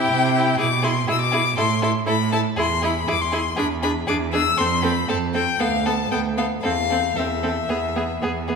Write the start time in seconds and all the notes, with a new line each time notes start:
Already playing: E4 G4 G5
0.10 C3
0.34 E4 G4
0.58 B2 E4 G#4 D6
0.82 E4 G#4 C6
1.07 B2 E4 G#4 E6
1.21 D6
1.32 E4 G#4
1.57 A2 E4 A4 C6
1.82 E4 A4 C6
2.07 A2 E4 A4 B5
2.32 E4 A4 A5
2.56 E2 E4 G#4 C6
2.82 E4 G#4 B5
3.07 E2 E4 G#4 D6
3.21 C6
3.32 E4 G#4
3.56 E2 D4 G#4 B5
3.83 D4 G#4 B5
4.07 E2 D4 G#4 D6
4.33 D4 G#4 E6
4.57 F2 C4 A4 C6
4.82 C4 A4 B5
5.08 F2 C4 A4 A5
5.34 C4 A4 G5
5.59 D2 B3 A4 F5
5.86 B3 A4 A5
6.11 D2 B3 A4 G5
6.37 B3 A4 F5
6.63 E2 C4 A4 F5
6.90 C4 A4
7.16 E2 C4 A4 E5
7.43 C4 A4
7.69 E2 B3 G#4
7.96 B3 G#4
8.22 E2 B3 G#4
8.48 B3 G#4